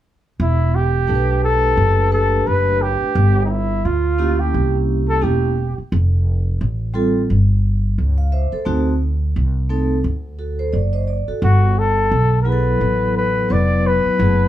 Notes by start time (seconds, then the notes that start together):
0.40 E1 E4
0.75 G4
1.07 B1 A3 D4 G4 A4
1.15 B4
1.44 A4
1.77 F#1
2.11 A3 D4 G4 A4 B4
2.47 F#1 B4
2.82 G4
3.01 muted upright bass stroke
3.15 G1
3.45 D#4
3.50 E4
3.85 D2 F4
4.18 A#3 C#4 E4 G4
4.40 G4
4.54 C2
5.08 A4
5.21 E1 A#3 C#4 E4 G4
5.78 muted upright bass stroke
5.92 F1
6.61 A1
6.94 G3 C4 F4 A4
7.30 G1
7.98 C#2
8.18 F5
8.32 C5 E5
8.52 A4 C5, muted upright bass stroke
8.65 D2 A3 C4 D#4 F#4
9.36 C2
9.69 A3 C4 D#4 A4
10.04 D2
10.39 F#4 A4
10.59 A4 C5
10.73 F#1 D5
10.93 C5 D#5
11.08 D5
11.28 F#4 A4, muted upright bass stroke
11.42 G1 F#4
11.79 A4
12.11 B1
12.42 F#3 B3 A#4
12.46 E4 G#4 B4
12.52 A4
12.81 A1
13.17 B4
13.49 F1 F#3 B3 E4 B4 D5
13.87 B4
14.05 muted upright bass stroke
14.18 F#1 F#3 B3 E4 G#4
14.26 A3